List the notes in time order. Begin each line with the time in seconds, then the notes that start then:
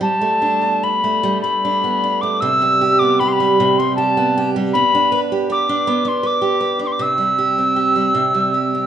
0.00 G3 A5
0.21 A3
0.42 D4
0.61 B3
0.83 D4 B5
1.04 A3
1.23 G3
1.41 A3 B5
1.65 D4
1.84 B3
2.04 D4
2.21 A3 D6
2.40 C3 E6
2.62 G3
2.81 G4
2.99 B3 D6
3.20 G4 B5
3.28 C6
3.33 B5
3.40 G3
3.60 C3
3.79 G3 C6
3.96 G4 A5
4.17 B3
4.38 G4
4.56 G3
4.73 B3 B5
4.95 D4
5.12 B4
5.32 G4
5.50 B4 D6
5.69 D4
5.87 B3
6.05 D4 C6
6.23 B4 D6
6.42 G4
6.61 B4
6.79 D4
6.84 C6 D6
6.92 D6
6.99 C3 E6
7.18 G3
7.39 G4
7.58 C4
7.76 G4
7.96 G3
8.15 C3
8.34 G3
8.54 G4
8.75 C4